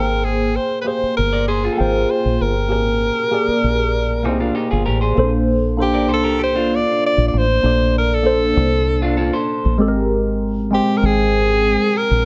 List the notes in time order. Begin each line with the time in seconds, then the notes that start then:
Already playing: G#1 A#3 G#4 A#4 C5 G5
0.25 G#4
0.56 C5
0.81 A#3 G4 B4
0.87 G#4 C5
1.03 muted fingered electric bass stroke
1.17 G1 A#4
1.33 A#4 D5
1.48 G#4 C5
1.64 F4 G#4
1.73 A#3 A4
1.78 G#1 G#4 A#4 C5 G5
2.10 C5
2.25 A#1
2.40 G1 A#4
2.68 G#1 A#3 G4 G#4 A#4
3.31 A#3 G4 G#4 D5
3.48 muted fingered electric bass stroke
3.64 A#1
4.23 C2 A#3 C4 D#4 G4 G#4 C5
4.40 D4 F4
4.55 D#4 G4
4.71 G1 F4 G#4
4.86 A1 G4 A#4
5.01 G#4 C5
5.15 A#1 A#3 C4 A4 C5
5.23 D4
5.77 A#3 D4 A4 C5
5.82 G4
5.94 A#4 D5
6.08 C2 A4 C5
6.13 A4
6.23 G4 A#4
6.39 G4
6.44 C5
6.56 D4 F4
6.76 D5
7.06 D5
7.18 A#1
7.28 D5
7.33 A1
7.38 C5
7.63 A#1 A#3 D4 A4 D5
7.98 A#4
8.14 A4
8.23 A#3 D4 A4 C5
8.57 C2
9.02 D4 F4
9.17 F4 A4
9.33 A4 C5
9.65 A#1
9.78 G#1 G#3 C4 G4 A4
9.88 A#4
10.71 G#3 C4 G4 C5 G5
10.97 A#4
11.03 G#1 G#4
11.97 A#4
12.11 A#1